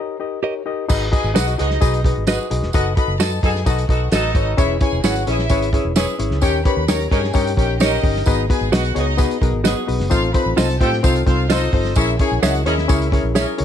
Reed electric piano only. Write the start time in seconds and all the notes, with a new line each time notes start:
Already playing: D#4 G4 A#4 C#5 D#5 A#5
0.20 D#4 G4 A#4 D#5
0.42 D#4 G4 A#4 C#5
0.66 D#4 G4 A#4 D#5
0.89 D#4 F#4 G#4 B4 D#5
1.12 D#4 F#4 G#4 B4 D#5
1.34 D#4 F#4 G#4 B4 D#5
1.58 D#4 F#4 G#4 B4 D#5
1.81 D#4 F#4 G#4 B4 D#5
2.05 D#4 F#4 G#4 B4 D#5
2.27 D#4 F#4 G#4 B4 D#5
2.50 D#4 F#4 G#4 B4 D#5
2.74 D#4 F#4 A4 B4 D#5
2.97 D#4 F#4 A4 B4 D#5
3.20 D#4 F#4 A4 B4 D#5
3.43 D#4 F#4 A4 B4 D#5
3.66 D#4 F#4 A4 B4 D#5
3.89 D#4 F#4 A4 B4 D#5
4.12 D#4 F#4 A4 B4 D#5
4.35 D#4 F#4 A4 B4 C#5
4.57 C#4 E4 G#4 B4 C#5
4.81 C#4 E4 G#4 B4 C#5
5.04 C#4 E4 G#4 B4 C#5
5.27 C#4 E4 G#4 B4 C#5
5.50 C#4 E4 G#4 B4 C#5
5.73 C#4 E4 G#4 B4 C#5
5.96 C#4 E4 G#4 B4 C#5
6.19 C#4 E4 G#4 B4 C#5
6.42 C#4 D#4 G4 A#4 C#5
6.65 C#4 D#4 G4 A#4 C#5
6.88 C#4 D#4 G4 A#4 C#5
7.11 C#4 D#4 G4 A#4 C#5
7.34 C#4 D#4 G4 A#4 C#5
7.57 C#4 D#4 G4 A#4 C#5
7.80 C#4 D#4 G4 A#4 C#5
8.03 C#4 D#4 G4 A#4 D#5
8.26 B3 D#4 F#4 G#4 B4
8.50 B3 D#4 F#4 G#4 B4
8.72 B3 D#4 F#4 G#4 B4
8.94 B3 D#4 F#4 G#4 C#5
9.17 B3 D#4 F#4 G#4 B4
9.41 B3 D#4 F#4 G#4 A#4
9.64 B3 D#4 F#4 G#4 B4
9.87 B3 D#4 F#4 G#4 B4
10.10 C4 D#4 F4 A4 C5
10.34 C4 D#4 F4 A4 C5
10.56 C4 D#4 F4 A4 C5
10.80 C4 D#4 F4 A4 C5
11.03 C4 D#4 F4 A4 C5
11.26 C4 D#4 F4 A4 C5
11.50 C4 D#4 F4 A4 C5
11.73 C4 D#4 F4 A4 C5
11.96 C#4 E4 G#4 A#4 C#5
12.20 C#4 E4 G#4 A#4 C#5
12.43 C#4 E4 G#4 A#4 D#5
12.66 C#4 E4 G#4 A#4 D#5
12.88 C#4 E4 G#4 A#4 C#5
13.12 C#4 E4 G#4 A#4 C#5
13.35 C#4 E4 G#4 A#4 C#5
13.57 C#4 E4 G#4 A#4 C#5